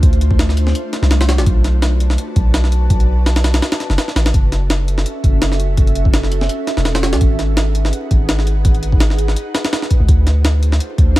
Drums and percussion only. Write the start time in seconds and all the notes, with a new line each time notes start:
0.03 kick, closed hi-hat
0.13 closed hi-hat
0.21 closed hi-hat
0.31 kick
0.39 snare, closed hi-hat
0.49 snare
0.57 closed hi-hat
0.67 snare
0.75 closed hi-hat
0.93 snare, closed hi-hat
1.03 snare
1.11 snare, closed hi-hat
1.21 snare, closed hi-hat
1.29 snare, closed hi-hat
1.38 snare, closed hi-hat
1.46 kick, closed hi-hat
1.64 snare, closed hi-hat
1.82 snare, closed hi-hat
2.00 closed hi-hat
2.10 snare
2.18 closed hi-hat
2.36 kick, closed hi-hat
2.54 snare, closed hi-hat
2.64 snare
2.72 closed hi-hat
2.90 kick, closed hi-hat
3.00 closed hi-hat
3.26 snare, closed hi-hat
3.36 snare, closed hi-hat
3.44 snare, closed hi-hat
3.54 snare, closed hi-hat
3.62 snare, closed hi-hat
3.72 snare, closed hi-hat
3.80 snare, closed hi-hat
3.90 snare
3.98 snare, closed hi-hat
4.08 snare
4.16 snare, closed hi-hat
4.26 snare, closed hi-hat
4.34 kick, closed hi-hat
4.52 snare, closed hi-hat
4.70 snare, closed hi-hat
4.88 closed hi-hat
4.98 snare
5.06 closed hi-hat
5.24 kick, closed hi-hat
5.42 snare, closed hi-hat
5.52 snare
5.60 closed hi-hat
5.77 kick, closed hi-hat
5.87 closed hi-hat
5.95 closed hi-hat
6.05 kick
6.14 snare, closed hi-hat
6.23 snare
6.32 closed hi-hat
6.41 snare
6.49 closed hi-hat
6.67 snare, closed hi-hat
6.77 snare
6.85 snare, closed hi-hat
6.95 snare, closed hi-hat
7.03 snare, closed hi-hat
7.13 snare, closed hi-hat
7.21 kick, closed hi-hat
7.39 snare, closed hi-hat
7.57 snare, closed hi-hat
7.75 closed hi-hat
7.85 snare
7.93 closed hi-hat
8.11 kick, closed hi-hat
8.29 snare, closed hi-hat
8.39 snare
8.47 closed hi-hat
8.65 kick, closed hi-hat
8.74 closed hi-hat
8.83 closed hi-hat
8.92 kick
9.00 snare, closed hi-hat
9.10 snare
9.19 closed hi-hat
9.28 snare
9.36 closed hi-hat
9.55 snare, closed hi-hat
9.65 snare, closed hi-hat
9.73 snare, closed hi-hat
9.82 snare
9.91 kick, closed hi-hat
10.08 kick, closed hi-hat
10.27 snare, closed hi-hat
10.45 snare, closed hi-hat
10.63 closed hi-hat
10.72 snare
10.80 closed hi-hat
10.98 kick, closed hi-hat
11.16 snare, closed hi-hat